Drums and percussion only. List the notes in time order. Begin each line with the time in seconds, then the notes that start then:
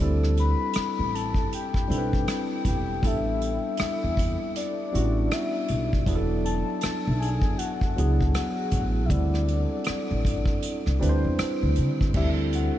0.00 closed hi-hat
0.23 cross-stick
0.37 closed hi-hat
0.74 cross-stick, closed hi-hat
1.15 closed hi-hat
1.34 kick
1.53 closed hi-hat
1.74 kick, cross-stick
1.91 closed hi-hat
2.13 kick
2.28 cross-stick, closed hi-hat
2.65 kick, closed hi-hat
3.03 kick, closed hi-hat
3.42 closed hi-hat
3.77 cross-stick, closed hi-hat
4.17 kick, closed hi-hat
4.56 closed hi-hat
4.95 closed hi-hat
5.31 cross-stick, closed hi-hat
5.68 closed hi-hat
5.93 kick
6.06 kick, closed hi-hat
6.46 closed hi-hat
6.81 cross-stick, closed hi-hat
7.22 closed hi-hat
7.42 kick
7.59 closed hi-hat
7.81 kick
7.98 closed hi-hat
8.21 kick
8.35 cross-stick, closed hi-hat
8.71 kick, closed hi-hat
9.10 kick, closed hi-hat
9.34 cross-stick
9.49 closed hi-hat
9.84 cross-stick, closed hi-hat
10.25 kick, closed hi-hat
10.45 kick
10.63 closed hi-hat
10.86 cross-stick
11.02 closed hi-hat
11.39 cross-stick, closed hi-hat
11.76 closed hi-hat
12.01 kick
12.14 kick, crash
12.53 closed hi-hat